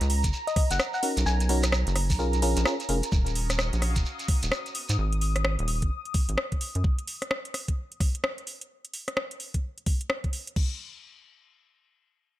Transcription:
Already playing: A#5
0.01 C#2, closed hi-hat, shekere
0.10 open hi-hat
0.24 F#1, kick, closed hi-hat, shekere
0.33 shekere
0.47 D#5, closed hi-hat, shekere
0.56 D#5, kick, cross-stick, open hi-hat
0.71 F#1 F#5, closed hi-hat, shekere
0.80 cross-stick, shekere
0.94 F#5, shekere
1.03 C#4 D#4 F#4 A#4, open hi-hat
1.17 B1, closed hi-hat, shekere
1.26 B1 G#5, shekere
1.40 G#5, closed hi-hat, shekere
1.49 C#4 D#4 F#4 A#4, open hi-hat
1.63 cross-stick, closed hi-hat, shekere
1.72 cross-stick, shekere
1.87 F#1, closed hi-hat, shekere
1.96 cross-stick, open hi-hat
2.10 B1, kick, open hi-hat, shekere
2.19 C#4 F4 G#4 A#4, shekere
2.33 closed hi-hat, shekere
2.42 A#1 C#4 F4 G#4 A#4, open hi-hat
2.57 A#1, closed hi-hat, shekere
2.65 C#4 F4 G#4 A#4, cross-stick, shekere
2.80 closed hi-hat, shekere
2.89 F1 C#4 F4 G#4 A#4, open hi-hat
3.03 closed hi-hat, shekere
3.12 D#1 C#4 D#6, kick, shekere
3.26 closed hi-hat, shekere
3.35 open hi-hat
3.50 cross-stick, closed hi-hat, shekere
3.55 D#5, cross-stick, shekere
3.63 F#4
3.73 A#1, closed hi-hat, shekere
3.82 cross-stick, open hi-hat
3.86 F5
3.96 D#1, kick, closed hi-hat, shekere
4.05 shekere
4.19 closed hi-hat, shekere
4.28 kick, cross-stick, open hi-hat
4.43 D#1, closed hi-hat, shekere
4.52 cross-stick, shekere
4.66 closed hi-hat, shekere
4.75 B3, open hi-hat
4.88 G#2 G#4 A#4 F#5, closed hi-hat, shekere
4.98 G#1
5.13 closed hi-hat
5.21 open hi-hat
5.36 cross-stick, closed hi-hat
5.45 cross-stick
5.59 D#1, closed hi-hat
5.68 open hi-hat
5.82 G#1, kick, closed hi-hat
6.05 closed hi-hat
6.14 kick, open hi-hat
6.29 G#1, closed hi-hat
6.38 cross-stick
6.52 kick, closed hi-hat
6.61 open hi-hat
6.75 F#2, closed hi-hat
6.84 kick
6.99 closed hi-hat
7.07 open hi-hat
7.22 cross-stick, closed hi-hat
7.31 cross-stick
7.45 closed hi-hat
7.54 cross-stick, open hi-hat
7.68 kick, closed hi-hat
7.92 closed hi-hat
8.00 kick, cross-stick, open hi-hat
8.15 closed hi-hat
8.24 cross-stick
8.38 closed hi-hat
8.47 open hi-hat
8.61 closed hi-hat
8.85 closed hi-hat
8.94 open hi-hat
9.08 cross-stick, closed hi-hat
9.17 cross-stick
9.31 closed hi-hat
9.40 open hi-hat
9.54 kick, closed hi-hat
9.78 closed hi-hat
9.86 kick, open hi-hat
10.01 closed hi-hat
10.10 cross-stick
10.24 kick, closed hi-hat
10.33 open hi-hat
10.47 closed hi-hat
10.56 kick, crash

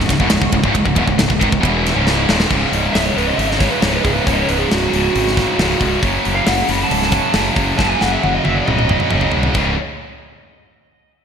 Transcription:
Already playing: C#3 G#3 E4 F#4
0.00 C#2 G#2, snare
0.09 C#1 C#2 G#2, kick, snare, ride
0.20 E1 E2 B2, kick
0.30 C#1 C#2 G#2, snare, ride
0.42 C#1 C#2 G#2, kick
0.52 C#1 C#2 G#2, kick, ride
0.64 C#1 C#2 G#2, kick
0.74 C#1 C#2 G#2, kick, ride
0.85 C#1 C#2 G#2, kick
0.95 E1 E2 B2, kick, ride
1.06 C#1 C#2 G#2, kick
1.18 C#1 C#2 G#2, snare, ride
1.28 C#1 C#2 G#2, kick
1.39 G#1 G#2 D#3, kick, ride
1.50 C#1 C#2 G#2, kick
1.60 E1 E2 B2 E3, kick
1.65 ride
1.86 snare, ride
1.94 C#1 C#2 G#2 C#3
2.07 snare
2.27 D#1 D#2 A#2 D#3, snare
2.40 snare
2.48 C#1 C#2 G#2 C#3, kick, crash
2.72 C#1, open hi-hat
2.93 C#1 E5, snare, open hi-hat
3.05 C#5
3.15 C#1 C#2 G#2 C#3 B4, open hi-hat
3.28 D#5
3.37 G#1 E5, open hi-hat
3.49 D#5, snare
3.58 C#2 G#2 C#3 C#5, kick, snare, open hi-hat
3.70 B4
3.80 C#1 C#2 G#2 C#3 C#5, snare, open hi-hat
3.94 B4
4.03 C#1 G#4, kick, open hi-hat
4.13 B4
4.23 C#2 G#2 C#3 C#5, kick
4.28 C#1, open hi-hat
4.33 D#5
4.40 C#5
4.48 C#1 B4, open hi-hat
4.59 G#4
4.70 C#1 F#4, snare, open hi-hat
4.89 C#1 C#2 G#2 C#3, open hi-hat
5.16 G#1, open hi-hat
5.28 snare
5.35 C#2 G#2 C#3, kick, snare, open hi-hat
5.57 C#1 C#2 G#2 C#3, snare, open hi-hat
5.81 C#1, kick, open hi-hat
6.02 F#1 F#2 C#3 F#3, kick, open hi-hat
6.25 F#1, open hi-hat
6.35 F5
6.47 F#1 F#5, snare, open hi-hat
6.67 F#1 F#2 C#3 F#3 B5, open hi-hat
6.83 A5
6.91 C#1, open hi-hat
7.02 snare
7.12 C#3 F#3, kick, snare, open hi-hat
7.17 F#2
7.33 F#1 F#2 C#3 F#3, snare, open hi-hat
7.56 F#1, kick, open hi-hat
7.77 F#1 F#2 C#3 F#3 A5, kick, snare
7.88 G#5
8.01 F#1 F#5, snare
8.12 E5
8.22 F#1 F#5, high tom
8.34 D#5
8.44 F#1 F#2 C#3 F#3 E5, high tom
8.55 D5
8.66 C#1 D#5, mid tom
8.79 mid tom
8.89 F#2 C#3 F#3, mid tom
9.00 mid tom
9.10 F#1 F#2 C#3 F#3, mid tom
9.21 floor tom
9.32 floor tom
9.36 C2
9.43 floor tom
9.54 C#1 C#2 G#2 C#3, kick, crash

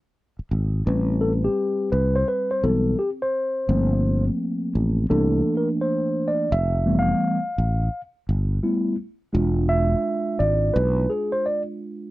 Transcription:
0.39 muted fretless electric bass stroke
0.51 G#1
0.86 A1 G3 C4 B4
1.21 A4
1.44 G4
1.92 C2 B4
2.16 C5
2.28 B4
2.51 C5
2.63 B1 E3 G3 B3 A4
2.99 G4
3.22 C5
3.68 G1 F3 A3 A#3 C4
4.75 A1
5.10 C2 E3 A3 A#3 D4 A4
5.57 A#4
5.81 C5
6.28 D5
6.52 F1 E5
6.86 E3 G3 A3 B3
6.99 F5
7.58 A1
8.29 G1
8.63 G3 A3 B3 E4
9.33 E1 G#3 D4 F4
9.69 E5
10.39 G#1 D5
10.74 B1 B4
11.10 G#4
11.32 C5
11.46 D5

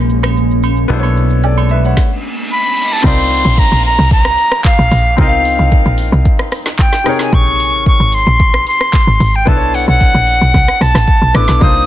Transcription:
Already playing: A#1 G#3 A#3 C#4 D#4 G#4 C5
0.10 shaker
0.23 cross-stick, high agogo, shaker
0.37 shaker
0.51 shaker
0.63 high agogo, shaker
0.77 shaker
0.88 B1 B3 D4 E4 A4, shaker
0.93 C5
0.99 C#5, high agogo
1.04 shaker
1.17 shaker
1.30 shaker
1.43 A4 D5, low woodblock, shaker
1.57 high agogo, shaker
1.69 B4 E5, shaker
1.84 C#5 F#5, shaker
1.97 kick, snare, reverse cymbal
2.52 B5
2.93 A5
3.02 C2 C4 D#4 F4 A#4 C6, kick, crash, downlifter, shaker
3.07 D5
3.18 shaker
3.31 open hi-hat, shaker
3.44 A#1, shaker
3.57 A#5, kick, shaker
3.71 A#1, shaker
3.84 A#5, open hi-hat, shaker
3.99 C2, shaker
4.11 A#5, kick, shaker
4.25 cross-stick, shaker
4.38 open hi-hat, shaker
4.51 cross-stick, shaker
4.65 F5, kick, clap, shaker
4.79 A#1, shaker
4.91 A#1, open hi-hat, shaker
5.05 shaker
5.17 C2 C4 D#4 F4 A#4 F5, kick, shaker
5.21 D#5
5.28 F5, shaker
5.45 open hi-hat, shaker
5.58 C2, shaker
5.71 kick, shaker
5.85 A#1, shaker
5.98 open hi-hat, shaker
6.12 C2, shaker
6.25 kick, shaker
6.39 cross-stick, shaker
6.52 cross-stick, open hi-hat, shaker
6.65 snare, shaker
6.79 G5, kick, clap, shaker
6.93 snare, shaker
7.04 C3 D#4 G#4 A#4, cross-stick, open hi-hat, shaker
7.09 C#5
7.19 G#5, snare, shaker
7.32 A#1 C#6, kick, shaker
7.46 shaker
7.60 open hi-hat, shaker
7.73 G#1, shaker
7.86 C#6, kick, shaker
8.00 G#1, shaker
8.12 C6, open hi-hat, shaker
8.27 A#1, shaker
8.40 kick, shaker
8.54 cross-stick, shaker
8.67 C6, open hi-hat, shaker
8.80 cross-stick, shaker
8.93 kick, clap, shaker
9.07 G#1, shaker
9.20 G#1, open hi-hat, shaker
9.34 G5, shaker
9.45 B1 B3 D4 E4 A4 A5, kick, shaker
9.50 B4
9.57 C#5
9.61 shaker
9.74 F#5, open hi-hat, shaker
9.87 B1 F#5, shaker
10.01 kick, shaker
10.15 A#1, shaker
10.27 open hi-hat, shaker
10.41 B1, shaker
10.54 C2, kick, shaker
10.68 cross-stick, shaker
10.81 B1 A5, cross-stick, open hi-hat, shaker
10.95 A1, cross-stick, snare, shaker
11.08 kick, shaker
11.22 B1, shaker
11.34 A1 B3 D4 E4 A4 B4 D6, cross-stick, open hi-hat, shaker
11.48 B1, snare, shaker
11.59 C2 A#3 D4 D#4 F4 D#6, kick, shaker
11.64 C5
11.75 shaker

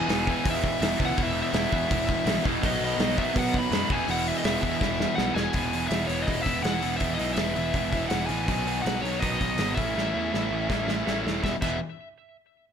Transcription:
Already playing: E2 B2 E3 G#5
0.07 E1 E2 B2 E3 G#3 B3 E4, snare, open hi-hat
0.26 E2 B2 E3 G#3 B3 E4, kick
0.31 G#5
0.44 E2 B2 E3 G#3 B3 E4, kick, open hi-hat
0.50 E5
0.64 kick
0.81 E1 E2 B2 E3 G#3 B3 E4, snare, open hi-hat
0.98 C#2 E2 B2 E3 G#3 B3 E4, kick
1.05 F#5
1.17 E1 E2 B2 E3 G#3 B3 E4, kick, open hi-hat
1.23 E5
1.42 E5
1.53 E1 E2 B2 E3 G#3 B3 E4, snare, open hi-hat
1.71 E2 B2 E3 G#3 B3 E4, kick
1.88 E1 E2 B2 E3 G#3 B3 E4, kick, open hi-hat
2.09 kick
2.25 B1 E2 B2 E3 G#3 B3 E4, snare, open hi-hat
2.42 E1 E2 B2 E3 G#3 B3 E4, kick
2.47 E2 B2 E3
2.63 B1 B2 D#3 F#3 B3 D#4 D#5, kick, open hi-hat
2.81 B1 D#5
2.98 B1 B2 D#3 F#3 B3 D#4, snare, open hi-hat
3.17 B2 D#3 F#3 B3 D#4 E5, kick
3.36 B2 D#3 F#3 B3 D#4 F#5, kick, open hi-hat
3.54 kick
3.59 B5
3.71 F#2 B2 D#3 F#3 B3 D#4, snare, open hi-hat
3.88 E1 E2 B2 E3 B3 E4 G#5, kick
3.92 E3 G#3
4.08 E1 E2 B2 E3 G#3 B3 E4 F#5, open hi-hat
4.28 E5
4.38 D#5
4.44 E1 E2 B2 E3 G#3 B3 E4 E5, snare, open hi-hat
4.61 E2 B2 E3, kick
4.65 G#3 B3 E4
4.80 E1 E2 B2 E3 G#3 B3 E4, kick, snare
5.00 snare
5.15 B1 E2 B2 E3 G#3 F#5, snare
5.19 B2 E3 B3 E4
5.34 E1 E2 B2 E3 G#3 B3 E4 G#5, snare
5.53 E1 E2 B2 E3 G#3 B3 E4, kick, open hi-hat
5.73 E2 B2 E3 G#3 B3 E4, open hi-hat
5.88 E1 E2 B2 E5, open hi-hat
5.92 E3 G#3 B3 E4, snare
6.07 E1 E2 B2 E3 C#5, open hi-hat
6.11 G#3 B3 E4
6.22 D#5
6.27 E1 E2 B2 E3 G#3 B3 E4, kick, open hi-hat
6.41 E2 E5
6.46 E1 B2 E3 G#3 B3 E4, kick, open hi-hat
6.62 E1 E2 B2 E3 G#3 B3 E4 F#5, snare, open hi-hat
6.82 E1 E2 B2 E3 G#3 B3 E4, open hi-hat
6.97 E3 E5, kick, open hi-hat
7.01 E1 E2 B2 G#3 B3 E4
7.14 E2 E3 G#3 D#5
7.18 B1 B2 B3 E4, open hi-hat
7.34 E1 E2 B2 E3 G#3 E5, snare, open hi-hat
7.38 B3 E4
7.55 E1 E2 B2 E3 G#3 B3 E4, open hi-hat
7.74 E1 E2 B2 E3 G#3 B3 E4, kick, open hi-hat
7.92 E2 B2 E3 G#3 B3 E4, kick, open hi-hat
8.09 E1 E2 B2 E3 G#3 B3 E4 F#5, snare, open hi-hat
8.26 A1 E2 B2 E3 G#3 B3 E4 G#5, open hi-hat
8.48 B1 B2 D#3 F#3 B3 D#4, kick, open hi-hat
8.66 B2 D#3 F#3 B3 D#4, open hi-hat
8.82 B1 F#5
8.86 B2 D#3 F#3 B3 D#4, snare, open hi-hat
9.01 B1 B2 C#5
9.05 D#3 F#3 B3 D#4, open hi-hat
9.19 B1 D#5, kick, open hi-hat
9.24 B2 D#3 F#3 B3 D#4
9.41 B1 B2 D#3 F#3 B3 D#4, kick, open hi-hat
9.58 G#1 B2, snare, open hi-hat
9.62 D#3 F#3 B3 D#4
9.75 A1 A2 E3 A3 E5, kick, open hi-hat
9.79 C#4 E4
9.96 A1 A2 E3 A3 C#4 E4, snare
10.15 E2 A2 E3 A3 C#4 E4
10.34 A1 A2 E3 A3 C#4 E4, snare
10.51 A1 A2 E3 A3 C#4 E4
10.69 A1 A2 E3 A3 C#4 E4, kick, snare
10.88 A2 E3 A3 C#4 E4, snare
11.07 A1 A2 E3 A3 C#4 E4, snare
11.25 E1 A2 E3 A3 C#4 E4, snare
11.43 E1 E2 B2 E3 G#3 B3 E4 E5, kick, snare
11.62 E1 E2 B2 E3 G#3 B3 E4 E5, kick, crash

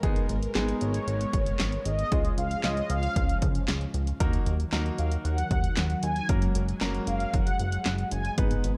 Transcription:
Already playing: G#3 A#4
0.03 G#1 G#3 B3 D#4 G#4, kick, closed hi-hat
0.16 closed hi-hat
0.29 G#1, closed hi-hat
0.43 closed hi-hat
0.55 G#1 G#3 B3 D#4 G#4, snare, clap, closed hi-hat
0.69 closed hi-hat
0.81 G#1 C#5, closed hi-hat
0.94 closed hi-hat
1.07 G#1, closed hi-hat
1.21 closed hi-hat
1.33 G#1, kick, closed hi-hat
1.46 closed hi-hat
1.59 G#1, snare, clap, closed hi-hat
1.72 closed hi-hat
1.85 G#1 D#5, closed hi-hat
1.99 closed hi-hat
2.12 C#2 F3 G#3 C#4 F4 G#4, kick, closed hi-hat
2.25 closed hi-hat
2.38 C#2 F5, closed hi-hat
2.51 closed hi-hat
2.64 C#2 G#3 C#4 F4 G#4 D#5, snare, clap, closed hi-hat
2.77 closed hi-hat
2.90 C#2 F5, closed hi-hat
3.03 closed hi-hat
3.16 C#2, kick, closed hi-hat
3.29 closed hi-hat
3.42 C#2, kick, closed hi-hat
3.55 closed hi-hat
3.68 C#2, snare, clap, closed hi-hat
3.81 closed hi-hat
3.94 C#2, closed hi-hat
4.07 closed hi-hat
4.20 D#2 D#3 F#3 A#3 D#4 F#4 A#4, kick, closed hi-hat
4.33 closed hi-hat
4.46 D#2, closed hi-hat
4.60 closed hi-hat
4.73 D#2 A#3 D#4 F#4 A#4, snare, clap, closed hi-hat
4.86 closed hi-hat
4.98 D#2 F5, closed hi-hat
5.11 closed hi-hat
5.25 D#2 F#5, closed hi-hat
5.38 closed hi-hat
5.51 D#2, kick, closed hi-hat
5.64 closed hi-hat
5.77 D#2, snare, clap, closed hi-hat
5.90 closed hi-hat
6.03 D#2 G#5, closed hi-hat
6.16 closed hi-hat
6.29 F#1 G#3 A#3 C#4 F#4 A#4, kick, closed hi-hat
6.42 closed hi-hat
6.55 F#1, closed hi-hat
6.68 closed hi-hat
6.81 F#1 A#3 C#4 F#4 A#4, snare, clap, closed hi-hat
6.94 closed hi-hat
7.07 F#1 F5, closed hi-hat
7.20 closed hi-hat
7.33 F#1 F#5, kick, closed hi-hat
7.47 closed hi-hat
7.59 F#1, closed hi-hat
7.72 closed hi-hat
7.86 F#1, snare, clap, closed hi-hat
7.98 closed hi-hat
8.11 F#1 G#5, closed hi-hat
8.25 closed hi-hat
8.38 G#1 B3 D#4 G#4 B4, kick, closed hi-hat
8.51 closed hi-hat
8.64 G#1, closed hi-hat

